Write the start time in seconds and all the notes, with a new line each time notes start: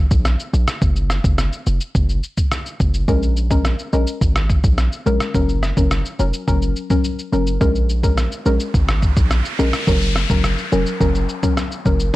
0.11 A#1, kick, shaker
0.25 cross-stick, shaker
0.40 shaker
0.53 A#1, shaker
0.68 cross-stick, shaker
0.82 F#1, kick, shaker
0.96 shaker
1.10 cross-stick, shaker
1.24 F#1, kick, shaker
1.38 cross-stick, shaker
1.53 shaker
1.66 F1, shaker
1.81 shaker
1.95 F#1, kick, shaker
2.09 shaker
2.23 shaker
2.37 kick, shaker
2.51 cross-stick, shaker
2.66 shaker
2.80 F#1, kick, shaker
2.94 shaker
3.08 A#1 G#3 C#4 A#4, kick, shaker
3.23 shaker
3.36 shaker
3.50 G#3 C#4 A#4, kick, shaker
3.65 cross-stick, shaker
3.79 shaker
3.93 A#1 G#3 C#4 A#4, shaker
4.07 shaker
4.21 G#1, kick, shaker
4.36 cross-stick, shaker
4.50 kick, shaker
4.64 A#1, kick, shaker
4.78 cross-stick, shaker
4.92 shaker
5.06 A#1 G#3 C#4 A#4, shaker
5.20 cross-stick, shaker
5.34 F#1 F#3 C#4 A#4, kick, shaker
5.49 shaker
5.63 cross-stick, shaker
5.77 F#1 F#3 C#4 A#4, kick, shaker
5.91 cross-stick, shaker
6.05 shaker
6.19 F1 F#3 C#4 A#4, shaker
6.33 shaker
6.47 F#1 F#3 C#4 A#4, kick, shaker
6.62 shaker
6.76 shaker
6.90 F#3 C#4 A#4, kick, shaker
7.04 shaker
7.19 shaker
7.32 F#1 F#3 C#4 A#4, shaker
7.47 shaker
7.61 A#1 G#3 C#4 A#4, kick, noise sweep, shaker
7.75 shaker
7.89 shaker
8.03 G#3 C#4 A#4, kick, shaker
8.17 cross-stick, shaker
8.32 shaker
8.46 A#1 G#3 C#4 A#4, shaker
8.60 shaker
8.74 G#1, kick, shaker
8.88 cross-stick, shaker
9.02 kick, shaker
9.17 A#1, kick, shaker
9.31 cross-stick, shaker
9.45 shaker
9.59 A#1 G#3 C#4 A#4, shaker
9.73 cross-stick, shaker
9.87 F#1 F#3 C#4 A#4, kick, shaker
10.02 shaker
10.16 cross-stick, shaker
10.30 F#1 F#3 C#4 A#4, kick, shaker
10.44 cross-stick, shaker
10.58 shaker
10.72 F1 F#3 C#4 A#4, shaker
10.86 shaker
11.00 F#1 F#3 C#4 A#4, kick, shaker
11.15 shaker
11.29 shaker
11.43 F#3 C#4 A#4, kick, shaker
11.57 cross-stick, shaker
11.72 shaker
11.85 F#1 F#3 C#4 A#4, kick, shaker
12.00 shaker